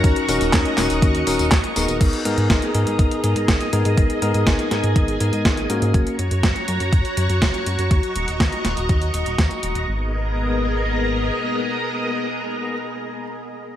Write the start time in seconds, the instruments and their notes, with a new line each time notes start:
Already playing: tine electric piano C#4 D#4 F#4 A#4, string machine F#4 A#5 C#6
0.04 analog synth bass D#2, string machine D#5, kick, closed hi-hat, tambourine
0.16 closed hi-hat
0.28 analog synth bass D#1, tine electric piano C#4 D#4 F#4 A#4, open hi-hat, tambourine
0.41 analog synth bass D#1, closed hi-hat, tambourine
0.53 analog synth bass D#2, kick, snare, clap, closed hi-hat, tambourine
0.65 closed hi-hat
0.78 analog synth bass D#1, tine electric piano C#4 D#4 F#4 A#4, snare, clap, open hi-hat, tambourine
0.90 analog synth bass D#1, closed hi-hat, tambourine
1.02 analog synth bass D#2, kick, closed hi-hat, tambourine
1.15 closed hi-hat
1.27 analog synth bass D#1, tine electric piano C#4 D#4 F#4 A#4, open hi-hat, tambourine
1.39 analog synth bass D#1, closed hi-hat, tambourine
1.52 analog synth bass D#2, kick, snare, clap, closed hi-hat, tambourine
1.64 closed hi-hat
1.76 analog synth bass D#1, tine electric piano B3 D#4 G#4 A#4, open hi-hat, tambourine
1.88 analog synth bass D#1, closed hi-hat, tambourine
2.01 analog synth bass G#1, string machine G#4 D#5 A#5, kick, closed hi-hat, crash
2.13 closed hi-hat
2.25 analog synth bass G#2, tine electric piano B3 D#4 G#4 A#4, closed hi-hat
2.38 analog synth bass G#2, closed hi-hat
2.50 analog synth bass G#1, kick, snare, closed hi-hat
2.62 closed hi-hat
2.75 analog synth bass G#2, tine electric piano B3 D#4 G#4 A#4, closed hi-hat
2.87 analog synth bass G#2, closed hi-hat
2.99 analog synth bass G#1, kick, closed hi-hat
3.11 closed hi-hat
3.24 analog synth bass G#2, tine electric piano B3 D#4 G#4 A#4, closed hi-hat
3.36 analog synth bass G#2, closed hi-hat
3.48 analog synth bass G#1, kick, snare, closed hi-hat
3.61 closed hi-hat
3.73 analog synth bass G#2, tine electric piano B3 D#4 G#4 A#4, closed hi-hat
3.85 analog synth bass G#2, closed hi-hat
3.97 analog synth bass G#1, string machine G#5, kick, closed hi-hat
4.10 closed hi-hat
4.22 analog synth bass G#2, tine electric piano B3 D#4 G#4 A#4, closed hi-hat
4.34 analog synth bass G#2, closed hi-hat
4.47 analog synth bass G#1, kick, snare, closed hi-hat
4.59 closed hi-hat
4.71 analog synth bass G#2, tine electric piano B3 D#4 G#4 A#4, snare, closed hi-hat
4.84 analog synth bass G#2, closed hi-hat
4.96 analog synth bass G#1, kick, closed hi-hat
5.08 closed hi-hat
5.20 analog synth bass G#2, tine electric piano B3 D#4 G#4 A#4, closed hi-hat
5.33 analog synth bass G#2, closed hi-hat
5.45 analog synth bass G#1, kick, snare, closed hi-hat
5.57 closed hi-hat
5.70 analog synth bass G#2, tine electric piano A#3 C#4 F#4 A#4, closed hi-hat
5.82 analog synth bass G#2, closed hi-hat
5.94 analog synth bass F#1, string machine F#4 C#5 A#5 C#6, kick, closed hi-hat
6.07 closed hi-hat
6.19 analog synth bass F#2, closed hi-hat
6.31 analog synth bass F#2, closed hi-hat
6.43 analog synth bass F#1, kick, snare, closed hi-hat
6.56 closed hi-hat
6.68 analog synth bass F#2, closed hi-hat
6.80 analog synth bass F#2, closed hi-hat
6.93 analog synth bass F#1, kick, closed hi-hat
7.05 closed hi-hat
7.17 analog synth bass F#2, closed hi-hat
7.29 analog synth bass F#2, closed hi-hat
7.42 analog synth bass F#1, kick, snare, closed hi-hat
7.54 closed hi-hat
7.66 analog synth bass F#2, closed hi-hat
7.79 analog synth bass F#2, closed hi-hat
7.91 analog synth bass D#2, string machine D#5 A#5, kick, closed hi-hat
8.03 closed hi-hat
8.16 analog synth bass D#1, closed hi-hat
8.28 analog synth bass D#1, closed hi-hat
8.40 analog synth bass D#2, kick, snare, closed hi-hat
8.52 closed hi-hat
8.65 analog synth bass D#1, snare, closed hi-hat
8.77 analog synth bass D#1, closed hi-hat
8.89 analog synth bass D#2, kick, closed hi-hat
9.02 closed hi-hat
9.14 analog synth bass D#1, closed hi-hat
9.26 analog synth bass D#1, closed hi-hat
9.38 analog synth bass D#2, kick, snare, closed hi-hat
9.51 closed hi-hat
9.63 analog synth bass D#1, closed hi-hat
9.75 analog synth bass D#1, closed hi-hat
9.88 analog synth bass G#1, string machine B3 G#4 A#4 D#5 A#5